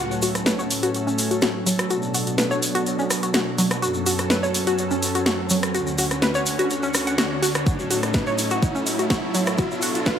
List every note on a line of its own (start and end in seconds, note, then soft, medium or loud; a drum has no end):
0.00 1.89 A2 medium
0.00 5.71 F#3 medium
0.00 1.89 C#4 medium
0.00 0.10 F#4 medium
0.00 3.79 A4 medium
0.00 riser medium
0.12 shaker soft
0.22 0.31 F#4 medium
0.22 open hi-hat loud
0.22 shaker medium
0.35 cross-stick medium
0.35 closed hi-hat medium
0.35 shaker soft
0.46 0.55 B4 medium
0.46 snare loud
0.46 closed hi-hat medium
0.46 shaker soft
0.59 0.66 C#5 medium
0.59 shaker soft
0.70 open hi-hat loud
0.70 shaker medium
0.83 0.94 F#4 loud
0.83 closed hi-hat medium
0.83 shaker soft
0.94 closed hi-hat medium
0.94 shaker soft
1.07 1.11 C#4 medium
1.07 shaker soft
1.18 open hi-hat loud
1.18 shaker medium
1.31 1.38 F#4 medium
1.31 closed hi-hat medium
1.31 shaker soft
1.41 1.54 F#4 medium
1.41 snare loud
1.41 closed hi-hat medium
1.41 shaker medium
1.66 1.75 F#3 medium
1.66 open hi-hat loud
1.66 shaker loud
1.79 cross-stick medium
1.79 closed hi-hat medium
1.79 shaker soft
1.90 3.81 B2 medium
1.90 3.81 D4 medium
1.90 2.02 F#4 medium
1.90 closed hi-hat medium
1.90 shaker medium
2.02 shaker soft
2.14 2.23 F#4 medium
2.14 open hi-hat loud
2.14 shaker medium
2.27 closed hi-hat medium
2.27 shaker soft
2.38 2.47 B4 medium
2.38 snare loud
2.38 closed hi-hat medium
2.38 shaker medium
2.51 2.58 C#5 loud
2.51 shaker soft
2.62 open hi-hat loud
2.62 shaker loud
2.75 2.86 F#4 loud
2.75 closed hi-hat medium
2.75 shaker soft
2.86 closed hi-hat medium
2.86 shaker medium
2.99 3.03 C#4 medium
2.99 shaker soft
3.10 cross-stick medium
3.10 open hi-hat loud
3.10 shaker medium
3.23 3.30 F#4 medium
3.23 closed hi-hat medium
3.23 shaker soft
3.34 3.46 F#4 medium
3.34 snare loud
3.34 closed hi-hat medium
3.34 shaker medium
3.58 3.67 F#3 medium
3.58 open hi-hat loud
3.58 shaker medium
3.71 cross-stick medium
3.71 closed hi-hat medium
3.71 shaker soft
3.82 5.73 F#2 medium
3.82 5.73 C#4 medium
3.82 3.94 F#4 medium
3.82 5.73 A4 medium
3.82 closed hi-hat soft
3.82 shaker medium
3.94 shaker soft
4.06 4.15 F#4 medium
4.06 open hi-hat loud
4.06 shaker loud
4.19 cross-stick medium
4.19 closed hi-hat medium
4.19 shaker soft
4.30 4.39 B4 medium
4.30 snare loud
4.30 closed hi-hat medium
4.30 shaker medium
4.43 4.50 C#5 loud
4.43 shaker soft
4.54 open hi-hat loud
4.54 shaker medium
4.67 4.78 F#4 loud
4.67 closed hi-hat medium
4.67 shaker soft
4.78 closed hi-hat medium
4.78 shaker medium
4.91 4.95 C#4 medium
4.91 shaker soft
5.03 open hi-hat loud
5.03 shaker medium
5.15 5.22 F#4 medium
5.15 closed hi-hat medium
5.15 shaker soft
5.26 5.38 F#4 medium
5.26 snare loud
5.26 closed hi-hat soft
5.26 shaker medium
5.50 5.59 F#3 medium
5.50 open hi-hat loud
5.50 shaker loud
5.63 cross-stick medium
5.63 closed hi-hat medium
5.63 shaker soft
5.74 7.65 D2 medium
5.74 7.65 D3 medium
5.74 9.55 C#4 medium
5.74 5.86 F#4 medium
5.74 7.65 F#4 medium
5.74 closed hi-hat soft
5.74 shaker medium
5.87 shaker soft
5.98 6.07 F#4 medium
5.98 open hi-hat loud
5.98 shaker medium
6.11 cross-stick medium
6.11 closed hi-hat medium
6.11 shaker soft
6.22 6.31 B4 medium
6.22 snare loud
6.22 closed hi-hat soft
6.22 shaker medium
6.35 6.42 C#5 loud
6.35 shaker soft
6.46 open hi-hat loud
6.46 shaker medium
6.59 6.70 F#4 loud
6.59 closed hi-hat medium
6.59 shaker soft
6.70 closed hi-hat medium
6.70 shaker medium
6.83 6.88 C#4 medium
6.83 shaker soft
6.94 cross-stick medium
6.94 open hi-hat loud
6.94 shaker medium
7.07 7.14 F#5 medium
7.07 closed hi-hat medium
7.07 shaker soft
7.18 7.23 F#4 loud
7.18 snare loud
7.18 closed hi-hat soft
7.18 shaker medium
7.42 7.47 F#4 loud
7.42 open hi-hat loud
7.42 shaker loud
7.55 cross-stick medium
7.55 closed hi-hat medium
7.55 shaker soft
7.67 9.57 A2 medium
7.67 10.19 F#3 medium
7.67 7.78 F#4 medium
7.67 10.19 A4 loud
7.67 kick loud
7.67 closed hi-hat soft
7.67 shaker medium
7.79 shaker soft
7.91 7.99 F#4 medium
7.91 open hi-hat loud
7.91 shaker loud
8.03 cross-stick medium
8.03 closed hi-hat medium
8.03 shaker soft
8.14 8.23 B4 medium
8.14 kick loud
8.14 snare loud
8.14 closed hi-hat medium
8.14 shaker medium
8.27 8.34 C#5 loud
8.27 shaker soft
8.38 open hi-hat loud
8.38 shaker loud
8.50 8.62 F#4 loud
8.50 closed hi-hat medium
8.50 shaker soft
8.62 kick loud
8.62 closed hi-hat medium
8.62 shaker medium
8.75 8.80 C#4 medium
8.75 shaker soft
8.86 open hi-hat loud
8.86 shaker loud
8.99 9.06 F#4 medium
8.99 closed hi-hat medium
8.99 shaker soft
9.10 9.22 F#4 medium
9.10 kick loud
9.10 snare loud
9.10 closed hi-hat soft
9.10 shaker medium
9.34 9.43 F#3 medium
9.34 open hi-hat loud
9.34 shaker medium
9.46 cross-stick medium
9.46 closed hi-hat medium
9.46 shaker soft
9.58 10.19 B2 medium
9.58 10.19 D4 medium
9.58 9.70 F#4 medium
9.58 kick loud
9.58 closed hi-hat soft
9.58 shaker soft
9.71 shaker soft
9.82 9.91 F#4 medium
9.82 open hi-hat loud
9.82 shaker medium
9.95 closed hi-hat medium
9.95 shaker soft
10.06 10.15 B4 medium
10.06 kick loud
10.06 snare loud
10.06 closed hi-hat medium
10.06 shaker medium